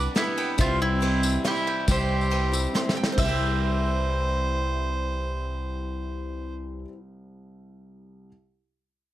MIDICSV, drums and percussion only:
0, 0, Header, 1, 2, 480
1, 0, Start_track
1, 0, Key_signature, 0, "major"
1, 0, Tempo, 431965
1, 652, Time_signature, 3, 2, 24, 8
1, 10149, End_track
2, 0, Start_track
2, 0, Title_t, "Drums"
2, 174, Note_on_c, 9, 38, 83
2, 174, Note_on_c, 9, 51, 65
2, 285, Note_off_c, 9, 38, 0
2, 285, Note_off_c, 9, 51, 0
2, 414, Note_on_c, 9, 51, 64
2, 525, Note_off_c, 9, 51, 0
2, 644, Note_on_c, 9, 54, 104
2, 651, Note_on_c, 9, 36, 121
2, 654, Note_on_c, 9, 51, 63
2, 755, Note_off_c, 9, 54, 0
2, 763, Note_off_c, 9, 36, 0
2, 765, Note_off_c, 9, 51, 0
2, 1132, Note_on_c, 9, 51, 63
2, 1243, Note_off_c, 9, 51, 0
2, 1369, Note_on_c, 9, 54, 102
2, 1480, Note_off_c, 9, 54, 0
2, 1606, Note_on_c, 9, 38, 85
2, 1606, Note_on_c, 9, 51, 69
2, 1717, Note_off_c, 9, 38, 0
2, 1717, Note_off_c, 9, 51, 0
2, 1734, Note_on_c, 9, 54, 30
2, 1846, Note_off_c, 9, 54, 0
2, 2083, Note_on_c, 9, 51, 62
2, 2086, Note_on_c, 9, 54, 109
2, 2088, Note_on_c, 9, 36, 107
2, 2194, Note_off_c, 9, 51, 0
2, 2197, Note_off_c, 9, 54, 0
2, 2199, Note_off_c, 9, 36, 0
2, 2457, Note_on_c, 9, 54, 33
2, 2568, Note_off_c, 9, 54, 0
2, 2568, Note_on_c, 9, 51, 66
2, 2679, Note_off_c, 9, 51, 0
2, 2816, Note_on_c, 9, 54, 105
2, 2927, Note_off_c, 9, 54, 0
2, 3053, Note_on_c, 9, 38, 62
2, 3164, Note_off_c, 9, 38, 0
2, 3212, Note_on_c, 9, 38, 79
2, 3323, Note_off_c, 9, 38, 0
2, 3371, Note_on_c, 9, 38, 102
2, 3482, Note_off_c, 9, 38, 0
2, 3531, Note_on_c, 9, 36, 112
2, 3532, Note_on_c, 9, 54, 98
2, 3538, Note_on_c, 9, 49, 100
2, 3642, Note_off_c, 9, 36, 0
2, 3643, Note_off_c, 9, 54, 0
2, 3649, Note_off_c, 9, 49, 0
2, 10149, End_track
0, 0, End_of_file